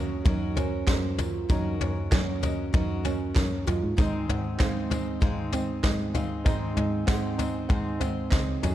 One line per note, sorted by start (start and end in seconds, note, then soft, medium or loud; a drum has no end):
0.00 1.45 F#1 medium
0.00 0.21 F#2 loud
0.00 1.45 F#2 medium
0.00 0.24 F#3 loud
0.00 0.25 A#3 loud
0.00 0.24 C#4 soft
0.00 0.24 C#4 medium
0.00 0.25 C#4 loud
0.00 0.25 F#4 medium
0.00 0.25 A#4 medium
0.00 0.26 A#4 loud
0.00 0.26 C#5 loud
0.00 2.44 D#5 loud
0.24 0.84 F#2 loud
0.24 0.49 F#3 medium
0.24 0.56 F#3 medium
0.24 0.49 A#3 medium
0.24 0.49 C#4 medium
0.24 0.57 C#4 loud
0.24 0.56 D#4 medium
0.24 0.56 F#4 medium
0.24 0.50 A#4 medium
0.24 0.54 A#4 loud
0.24 0.50 C#5 medium
0.24 kick loud
0.24 floor tom loud
0.55 0.80 F#3 medium
0.55 0.80 A#3 medium
0.55 1.17 C#4 medium
0.55 0.81 C#4 medium
0.55 1.49 C#4 medium
0.55 1.50 F#4 medium
0.55 1.49 A#4 medium
0.55 0.81 A#4 medium
0.55 0.81 C5 medium
0.55 floor tom loud
0.55 tambourine medium
0.87 1.46 F#2 medium
0.87 1.11 F#3 loud
0.87 1.11 A#3 loud
0.87 1.12 C#4 loud
0.87 1.12 A#4 loud
0.87 1.12 C5 loud
0.87 kick loud
0.87 snare loud
0.87 clap loud
0.87 floor tom loud
0.87 tambourine loud
1.18 1.42 F#3 medium
1.18 1.43 A#3 medium
1.18 1.43 C#4 medium
1.18 1.49 F4 medium
1.18 1.43 A#4 medium
1.18 1.43 C#5 loud
1.18 floor tom loud
1.18 tambourine medium
1.49 3.94 F#1 medium
1.49 1.78 F#2 loud
1.49 3.94 F#2 medium
1.49 2.09 F#3 medium
1.49 1.74 F#3 loud
1.49 1.74 A#3 loud
1.49 2.10 C#4 medium
1.49 1.74 C#4 loud
1.49 2.10 D#4 loud
1.49 2.12 F#4 medium
1.49 1.74 A#4 loud
1.49 2.12 A#4 medium
1.49 1.75 C#5 loud
1.49 kick loud
1.49 floor tom loud
1.49 tambourine medium
1.80 2.09 F#2 medium
1.80 2.04 F#3 medium
1.80 2.05 A#3 medium
1.80 2.05 C#4 medium
1.80 2.05 A#4 medium
1.80 2.05 C#5 loud
1.80 floor tom loud
1.80 tambourine soft
2.11 2.70 F#2 medium
2.11 2.42 F#3 medium
2.11 2.35 F#3 loud
2.11 2.36 A#3 loud
2.11 2.43 C#4 medium
2.11 2.73 C#4 medium
2.11 2.36 C#4 loud
2.11 2.42 F#4 medium
2.11 2.36 A#4 loud
2.11 2.40 A#4 medium
2.11 2.36 C#5 loud
2.11 kick loud
2.11 snare loud
2.11 clap loud
2.11 floor tom loud
2.11 tambourine loud
2.41 2.66 F#3 medium
2.41 2.66 A#3 medium
2.41 2.67 C#4 medium
2.41 2.72 C#4 soft
2.41 2.73 F#4 medium
2.41 2.73 A#4 medium
2.41 2.67 A#4 medium
2.41 2.67 D#5 loud
2.41 floor tom medium
2.41 tambourine medium
2.73 3.32 F#2 loud
2.73 3.04 F#3 medium
2.73 2.97 F#3 medium
2.73 2.97 A#3 medium
2.73 2.97 C#4 medium
2.73 3.05 C#4 loud
2.73 3.04 D#4 loud
2.73 3.04 F#4 loud
2.73 2.98 A#4 medium
2.73 3.02 A#4 medium
2.73 2.98 C5 medium
2.73 kick loud
2.73 floor tom loud
2.73 tambourine soft
3.03 3.28 F#3 medium
3.03 3.28 A#3 medium
3.03 3.29 C#4 medium
3.03 3.66 C#4 medium
3.03 3.98 C#4 soft
3.03 3.98 F#4 medium
3.03 3.97 A#4 medium
3.03 3.29 A#4 medium
3.03 3.29 D#5 medium
3.03 floor tom medium
3.03 tambourine medium
3.34 3.64 F#2 loud
3.34 3.59 F#3 loud
3.34 3.59 A#3 loud
3.34 3.60 C#4 medium
3.34 3.60 A#4 loud
3.34 3.60 C#5 loud
3.34 kick loud
3.34 snare loud
3.34 clap loud
3.34 floor tom loud
3.34 tambourine loud
3.66 3.81 F#2 medium
3.66 3.90 F#3 medium
3.66 3.91 A#3 medium
3.66 3.91 C#4 medium
3.66 3.97 F4 medium
3.66 3.91 A#4 medium
3.66 3.91 D#5 medium
3.66 floor tom loud
3.66 tambourine medium
3.83 3.97 G#2 medium
3.97 6.42 G#1 medium
3.97 4.59 G#2 medium
3.97 6.42 G#2 medium
3.97 4.26 G#2 loud
3.97 4.59 D#3 medium
3.97 4.21 G#3 loud
3.97 4.58 G#3 loud
3.97 4.22 C4 medium
3.97 4.59 C4 medium
3.97 4.22 D#4 loud
3.97 4.59 D#4 medium
3.97 4.60 D#4 loud
3.97 4.60 C5 medium
3.97 4.22 C5 loud
3.97 4.22 D#5 loud
3.97 kick loud
3.97 floor tom loud
3.97 tambourine medium
4.28 4.57 G#2 medium
4.28 4.52 G#3 medium
4.28 4.53 C4 medium
4.28 4.53 D#4 medium
4.28 4.53 C5 medium
4.28 4.53 F#5 loud
4.28 floor tom loud
4.58 5.18 G#2 loud
4.58 4.83 G#3 loud
4.58 4.90 G#3 medium
4.58 4.83 C4 loud
4.58 5.21 C4 medium
4.58 4.91 C4 medium
4.58 4.83 D#4 loud
4.58 4.90 D#4 medium
4.58 4.84 C5 loud
4.58 4.84 F5 loud
4.58 kick loud
4.58 snare loud
4.58 clap loud
4.58 floor tom loud
4.58 tambourine medium
4.62 4.89 C5 medium
4.90 5.14 G#3 loud
4.90 5.20 G#3 medium
4.90 5.14 C4 medium
4.90 5.21 C4 medium
4.90 5.15 D#4 medium
4.90 5.21 D#4 medium
4.90 5.22 C5 medium
4.90 5.15 C5 medium
4.90 5.15 D#5 medium
4.90 floor tom loud
4.90 tambourine medium
5.20 5.52 G#2 medium
5.20 5.80 G#2 loud
5.20 5.52 D#3 loud
5.20 5.45 G#3 medium
5.20 5.53 G#3 loud
5.20 5.46 C4 medium
5.20 5.53 C4 loud
5.20 5.52 D#4 medium
5.20 5.46 D#4 medium
5.20 5.53 D#4 loud
5.20 5.46 C5 medium
5.20 5.51 C5 medium
5.20 5.46 F5 medium
5.20 kick loud
5.20 floor tom loud
5.51 5.76 G#3 medium
5.51 5.77 C4 medium
5.51 6.14 C4 medium
5.51 6.15 C4 medium
5.51 5.77 D#4 medium
5.51 6.14 D#4 medium
5.51 6.13 C5 medium
5.51 5.77 C5 medium
5.51 5.77 D#5 medium
5.51 floor tom medium
5.51 tambourine medium
5.56 6.17 G#3 soft
5.83 6.42 G#2 loud
5.83 6.07 G#3 loud
5.83 6.07 C4 loud
5.83 6.08 D#4 medium
5.83 6.08 C5 loud
5.83 6.08 D#5 loud
5.83 kick loud
5.83 snare loud
5.83 clap loud
5.83 floor tom medium
5.83 tambourine loud
6.13 6.38 G#3 medium
6.13 6.38 C4 medium
6.13 6.46 C4 soft
6.13 6.38 D#4 medium
6.13 6.45 D#4 medium
6.13 6.46 D#4 medium
6.13 6.46 C5 medium
6.13 6.38 C5 medium
6.13 6.39 F5 loud
6.13 floor tom loud
6.13 tambourine medium
6.17 6.46 G#3 medium
6.44 8.58 G#1 medium
6.44 8.58 G#2 medium
6.44 7.08 G#2 medium
6.44 6.74 G#2 loud
6.44 7.08 D#3 loud
6.44 6.69 G#3 loud
6.44 7.08 G#3 medium
6.44 6.69 C4 loud
6.44 7.08 C4 medium
6.44 6.69 D#4 loud
6.44 7.07 D#4 medium
6.44 6.69 C5 loud
6.44 6.70 D#5 loud
6.44 kick loud
6.44 floor tom loud
6.44 tambourine medium
6.48 7.09 D#4 loud
6.48 7.09 C5 medium
6.75 7.05 G#2 medium
6.75 7.00 G#3 medium
6.75 7.00 C4 medium
6.75 7.00 D#4 medium
6.75 7.01 C5 medium
6.75 7.01 D#5 loud
6.75 floor tom medium
7.06 7.66 G#2 medium
7.06 7.31 G#3 loud
7.06 7.39 G#3 medium
7.06 7.31 C4 loud
7.06 7.69 C4 medium
7.06 7.40 C4 medium
7.06 7.31 D#4 loud
7.06 7.32 C5 loud
7.06 7.32 F#5 loud
7.06 kick loud
7.06 snare loud
7.06 clap loud
7.06 floor tom loud
7.06 tambourine loud
7.11 7.39 D#4 medium
7.11 7.37 C5 medium
7.37 7.62 G#3 loud
7.37 7.62 C4 medium
7.37 7.62 D#4 medium
7.37 7.69 D#4 medium
7.37 7.63 C5 medium
7.37 7.70 C5 medium
7.37 7.63 D#5 loud
7.37 7.53 A#5 medium
7.37 floor tom loud
7.37 tambourine medium
7.41 7.69 G#3 soft
7.41 7.69 C4 medium
7.53 7.68 G#5 medium
7.67 8.00 G#2 medium
7.67 8.28 G#2 loud
7.67 8.01 D#3 loud
7.67 7.93 G#3 medium
7.67 8.01 G#3 medium
7.67 7.93 C4 medium
7.67 8.01 C4 loud
7.67 7.93 D#4 medium
7.67 8.00 D#4 medium
7.67 8.01 D#4 medium
7.67 7.93 C5 medium
7.67 7.99 C5 loud
7.67 7.94 F#5 loud
7.67 kick loud
7.67 floor tom loud
7.99 8.24 G#3 medium
7.99 8.24 C4 medium
7.99 8.62 C4 medium
7.99 8.24 D#4 medium
7.99 8.64 D#4 medium
7.99 8.24 C5 medium
7.99 8.62 C5 medium
7.99 8.29 F5 medium
7.99 8.25 F#5 medium
7.99 floor tom medium
7.99 tambourine medium
8.03 8.67 G#3 soft
8.03 8.64 C4 medium
8.30 8.60 C#2 medium
8.30 8.55 G#3 loud
8.30 8.55 C4 loud
8.30 8.55 D#4 loud
8.30 8.56 C5 loud
8.30 8.56 D#5 loud
8.30 kick loud
8.30 snare loud
8.30 clap loud
8.30 floor tom medium
8.30 tambourine medium
8.46 8.62 C#5 medium
8.61 8.75 F#1 medium
8.61 8.75 F#2 medium
8.61 8.75 F#2 loud
8.61 8.75 A3 medium
8.61 8.75 C#4 loud
8.61 8.75 D#4 medium
8.61 8.75 F#4 medium
8.61 8.75 G#4 medium
8.61 8.75 C#5 loud
8.61 floor tom loud
8.61 tambourine medium
8.66 8.75 C#4 medium